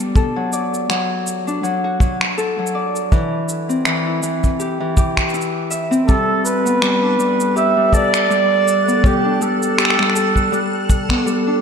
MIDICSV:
0, 0, Header, 1, 5, 480
1, 0, Start_track
1, 0, Key_signature, 1, "major"
1, 0, Tempo, 740741
1, 100, Time_signature, 4, 2, 24, 8
1, 7527, End_track
2, 0, Start_track
2, 0, Title_t, "Synth texture"
2, 0, Program_c, 0, 99
2, 3941, Note_on_c, 0, 69, 83
2, 3945, Note_on_c, 0, 90, 81
2, 7527, Note_off_c, 0, 69, 0
2, 7527, Note_off_c, 0, 90, 0
2, 7527, End_track
3, 0, Start_track
3, 0, Title_t, "Flugelhorn"
3, 0, Program_c, 1, 56
3, 3935, Note_on_c, 1, 69, 98
3, 4180, Note_on_c, 1, 71, 98
3, 4190, Note_off_c, 1, 69, 0
3, 4900, Note_off_c, 1, 71, 0
3, 4904, Note_on_c, 1, 76, 106
3, 5144, Note_on_c, 1, 74, 117
3, 5154, Note_off_c, 1, 76, 0
3, 5866, Note_on_c, 1, 67, 92
3, 5876, Note_off_c, 1, 74, 0
3, 6108, Note_on_c, 1, 69, 90
3, 6118, Note_off_c, 1, 67, 0
3, 7064, Note_off_c, 1, 69, 0
3, 7527, End_track
4, 0, Start_track
4, 0, Title_t, "Harp"
4, 0, Program_c, 2, 46
4, 0, Note_on_c, 2, 55, 74
4, 0, Note_on_c, 2, 59, 66
4, 0, Note_on_c, 2, 62, 72
4, 0, Note_on_c, 2, 67, 75
4, 0, Note_on_c, 2, 69, 67
4, 101, Note_off_c, 2, 69, 0
4, 104, Note_on_c, 2, 69, 75
4, 132, Note_off_c, 2, 55, 0
4, 188, Note_off_c, 2, 67, 0
4, 234, Note_on_c, 2, 54, 74
4, 342, Note_on_c, 2, 74, 66
4, 572, Note_off_c, 2, 54, 0
4, 580, Note_on_c, 2, 54, 99
4, 951, Note_off_c, 2, 62, 0
4, 954, Note_on_c, 2, 62, 70
4, 1049, Note_off_c, 2, 54, 0
4, 1057, Note_on_c, 2, 54, 89
4, 1193, Note_on_c, 2, 66, 69
4, 1292, Note_off_c, 2, 54, 0
4, 1300, Note_on_c, 2, 54, 72
4, 1527, Note_off_c, 2, 69, 0
4, 1530, Note_off_c, 2, 59, 0
4, 1538, Note_off_c, 2, 74, 0
4, 1540, Note_on_c, 2, 69, 79
4, 1667, Note_off_c, 2, 54, 0
4, 1675, Note_on_c, 2, 54, 69
4, 1780, Note_on_c, 2, 74, 71
4, 2021, Note_on_c, 2, 52, 82
4, 2052, Note_off_c, 2, 54, 0
4, 2391, Note_on_c, 2, 60, 69
4, 2491, Note_off_c, 2, 52, 0
4, 2499, Note_on_c, 2, 52, 90
4, 2633, Note_on_c, 2, 64, 70
4, 2731, Note_off_c, 2, 52, 0
4, 2739, Note_on_c, 2, 52, 61
4, 2768, Note_off_c, 2, 62, 0
4, 2773, Note_off_c, 2, 66, 0
4, 2963, Note_off_c, 2, 69, 0
4, 2977, Note_off_c, 2, 74, 0
4, 2978, Note_on_c, 2, 67, 73
4, 3105, Note_off_c, 2, 52, 0
4, 3113, Note_on_c, 2, 52, 68
4, 3216, Note_off_c, 2, 67, 0
4, 3218, Note_on_c, 2, 67, 84
4, 3455, Note_off_c, 2, 64, 0
4, 3458, Note_on_c, 2, 64, 76
4, 3697, Note_on_c, 2, 76, 70
4, 3826, Note_off_c, 2, 60, 0
4, 3828, Note_on_c, 2, 60, 91
4, 3937, Note_on_c, 2, 55, 92
4, 3972, Note_off_c, 2, 52, 0
4, 4311, Note_on_c, 2, 59, 68
4, 4350, Note_off_c, 2, 60, 0
4, 4408, Note_off_c, 2, 55, 0
4, 4416, Note_on_c, 2, 55, 98
4, 4552, Note_on_c, 2, 62, 74
4, 4650, Note_off_c, 2, 55, 0
4, 4658, Note_on_c, 2, 55, 67
4, 4744, Note_off_c, 2, 67, 0
4, 4813, Note_off_c, 2, 76, 0
4, 4898, Note_on_c, 2, 67, 75
4, 5026, Note_off_c, 2, 55, 0
4, 5034, Note_on_c, 2, 55, 69
4, 5137, Note_on_c, 2, 69, 72
4, 5150, Note_off_c, 2, 64, 0
4, 5368, Note_off_c, 2, 55, 0
4, 5376, Note_on_c, 2, 55, 100
4, 5750, Note_off_c, 2, 59, 0
4, 5752, Note_on_c, 2, 59, 64
4, 5848, Note_off_c, 2, 55, 0
4, 5856, Note_on_c, 2, 55, 87
4, 5989, Note_off_c, 2, 62, 0
4, 5992, Note_on_c, 2, 62, 66
4, 6092, Note_off_c, 2, 55, 0
4, 6099, Note_on_c, 2, 55, 70
4, 6335, Note_off_c, 2, 67, 0
4, 6337, Note_on_c, 2, 67, 84
4, 6465, Note_off_c, 2, 55, 0
4, 6472, Note_on_c, 2, 55, 78
4, 6560, Note_off_c, 2, 69, 0
4, 6578, Note_on_c, 2, 69, 62
4, 6809, Note_off_c, 2, 55, 0
4, 6817, Note_on_c, 2, 55, 87
4, 7188, Note_off_c, 2, 59, 0
4, 7190, Note_on_c, 2, 59, 68
4, 7286, Note_off_c, 2, 55, 0
4, 7294, Note_on_c, 2, 55, 92
4, 7429, Note_off_c, 2, 62, 0
4, 7432, Note_on_c, 2, 62, 71
4, 7527, Note_off_c, 2, 55, 0
4, 7527, Note_off_c, 2, 59, 0
4, 7527, Note_off_c, 2, 62, 0
4, 7527, Note_off_c, 2, 67, 0
4, 7527, Note_off_c, 2, 69, 0
4, 7527, End_track
5, 0, Start_track
5, 0, Title_t, "Drums"
5, 0, Note_on_c, 9, 82, 41
5, 62, Note_off_c, 9, 82, 0
5, 101, Note_on_c, 9, 36, 105
5, 103, Note_on_c, 9, 82, 31
5, 166, Note_off_c, 9, 36, 0
5, 168, Note_off_c, 9, 82, 0
5, 343, Note_on_c, 9, 82, 67
5, 408, Note_off_c, 9, 82, 0
5, 481, Note_on_c, 9, 82, 39
5, 546, Note_off_c, 9, 82, 0
5, 581, Note_on_c, 9, 26, 75
5, 587, Note_on_c, 9, 82, 30
5, 646, Note_off_c, 9, 26, 0
5, 652, Note_off_c, 9, 82, 0
5, 824, Note_on_c, 9, 82, 64
5, 888, Note_off_c, 9, 82, 0
5, 959, Note_on_c, 9, 82, 39
5, 1023, Note_off_c, 9, 82, 0
5, 1065, Note_on_c, 9, 82, 30
5, 1130, Note_off_c, 9, 82, 0
5, 1298, Note_on_c, 9, 36, 97
5, 1304, Note_on_c, 9, 82, 67
5, 1363, Note_off_c, 9, 36, 0
5, 1369, Note_off_c, 9, 82, 0
5, 1433, Note_on_c, 9, 26, 65
5, 1498, Note_off_c, 9, 26, 0
5, 1544, Note_on_c, 9, 82, 30
5, 1609, Note_off_c, 9, 82, 0
5, 1729, Note_on_c, 9, 82, 68
5, 1794, Note_off_c, 9, 82, 0
5, 1917, Note_on_c, 9, 82, 39
5, 1982, Note_off_c, 9, 82, 0
5, 2022, Note_on_c, 9, 36, 110
5, 2024, Note_on_c, 9, 82, 31
5, 2087, Note_off_c, 9, 36, 0
5, 2089, Note_off_c, 9, 82, 0
5, 2261, Note_on_c, 9, 82, 65
5, 2326, Note_off_c, 9, 82, 0
5, 2398, Note_on_c, 9, 82, 41
5, 2462, Note_off_c, 9, 82, 0
5, 2497, Note_on_c, 9, 26, 70
5, 2503, Note_on_c, 9, 82, 31
5, 2562, Note_off_c, 9, 26, 0
5, 2568, Note_off_c, 9, 82, 0
5, 2741, Note_on_c, 9, 82, 67
5, 2806, Note_off_c, 9, 82, 0
5, 2876, Note_on_c, 9, 36, 59
5, 2877, Note_on_c, 9, 82, 39
5, 2941, Note_off_c, 9, 36, 0
5, 2941, Note_off_c, 9, 82, 0
5, 2982, Note_on_c, 9, 82, 30
5, 3047, Note_off_c, 9, 82, 0
5, 3221, Note_on_c, 9, 36, 86
5, 3222, Note_on_c, 9, 82, 68
5, 3286, Note_off_c, 9, 36, 0
5, 3287, Note_off_c, 9, 82, 0
5, 3352, Note_on_c, 9, 26, 69
5, 3352, Note_on_c, 9, 36, 51
5, 3358, Note_on_c, 9, 82, 18
5, 3416, Note_off_c, 9, 36, 0
5, 3417, Note_off_c, 9, 26, 0
5, 3423, Note_off_c, 9, 82, 0
5, 3430, Note_on_c, 9, 82, 23
5, 3463, Note_off_c, 9, 82, 0
5, 3463, Note_on_c, 9, 82, 27
5, 3508, Note_off_c, 9, 82, 0
5, 3508, Note_on_c, 9, 82, 33
5, 3572, Note_off_c, 9, 82, 0
5, 3702, Note_on_c, 9, 82, 67
5, 3767, Note_off_c, 9, 82, 0
5, 3840, Note_on_c, 9, 82, 38
5, 3904, Note_off_c, 9, 82, 0
5, 3945, Note_on_c, 9, 36, 105
5, 3945, Note_on_c, 9, 82, 33
5, 4010, Note_off_c, 9, 36, 0
5, 4010, Note_off_c, 9, 82, 0
5, 4184, Note_on_c, 9, 82, 72
5, 4249, Note_off_c, 9, 82, 0
5, 4320, Note_on_c, 9, 82, 46
5, 4385, Note_off_c, 9, 82, 0
5, 4420, Note_on_c, 9, 26, 76
5, 4426, Note_on_c, 9, 82, 32
5, 4485, Note_off_c, 9, 26, 0
5, 4491, Note_off_c, 9, 82, 0
5, 4665, Note_on_c, 9, 82, 67
5, 4730, Note_off_c, 9, 82, 0
5, 4798, Note_on_c, 9, 82, 42
5, 4863, Note_off_c, 9, 82, 0
5, 4904, Note_on_c, 9, 82, 31
5, 4969, Note_off_c, 9, 82, 0
5, 5136, Note_on_c, 9, 36, 87
5, 5144, Note_on_c, 9, 82, 67
5, 5201, Note_off_c, 9, 36, 0
5, 5209, Note_off_c, 9, 82, 0
5, 5274, Note_on_c, 9, 26, 74
5, 5280, Note_on_c, 9, 82, 39
5, 5338, Note_off_c, 9, 26, 0
5, 5344, Note_off_c, 9, 82, 0
5, 5385, Note_on_c, 9, 82, 31
5, 5450, Note_off_c, 9, 82, 0
5, 5625, Note_on_c, 9, 82, 70
5, 5690, Note_off_c, 9, 82, 0
5, 5759, Note_on_c, 9, 82, 39
5, 5824, Note_off_c, 9, 82, 0
5, 5857, Note_on_c, 9, 36, 124
5, 5866, Note_on_c, 9, 82, 36
5, 5922, Note_off_c, 9, 36, 0
5, 5931, Note_off_c, 9, 82, 0
5, 6103, Note_on_c, 9, 82, 72
5, 6168, Note_off_c, 9, 82, 0
5, 6239, Note_on_c, 9, 82, 44
5, 6303, Note_off_c, 9, 82, 0
5, 6340, Note_on_c, 9, 26, 72
5, 6346, Note_on_c, 9, 82, 33
5, 6384, Note_off_c, 9, 26, 0
5, 6384, Note_on_c, 9, 26, 59
5, 6411, Note_off_c, 9, 82, 0
5, 6418, Note_off_c, 9, 26, 0
5, 6418, Note_on_c, 9, 26, 52
5, 6474, Note_off_c, 9, 26, 0
5, 6474, Note_on_c, 9, 26, 41
5, 6498, Note_off_c, 9, 26, 0
5, 6498, Note_on_c, 9, 26, 32
5, 6542, Note_off_c, 9, 26, 0
5, 6542, Note_on_c, 9, 26, 25
5, 6584, Note_on_c, 9, 82, 70
5, 6607, Note_off_c, 9, 26, 0
5, 6649, Note_off_c, 9, 82, 0
5, 6711, Note_on_c, 9, 36, 51
5, 6719, Note_on_c, 9, 82, 45
5, 6776, Note_off_c, 9, 36, 0
5, 6784, Note_off_c, 9, 82, 0
5, 6824, Note_on_c, 9, 82, 33
5, 6889, Note_off_c, 9, 82, 0
5, 7060, Note_on_c, 9, 36, 89
5, 7064, Note_on_c, 9, 82, 73
5, 7125, Note_off_c, 9, 36, 0
5, 7128, Note_off_c, 9, 82, 0
5, 7188, Note_on_c, 9, 36, 56
5, 7193, Note_on_c, 9, 26, 69
5, 7253, Note_off_c, 9, 36, 0
5, 7257, Note_off_c, 9, 26, 0
5, 7305, Note_on_c, 9, 82, 34
5, 7370, Note_off_c, 9, 82, 0
5, 7527, End_track
0, 0, End_of_file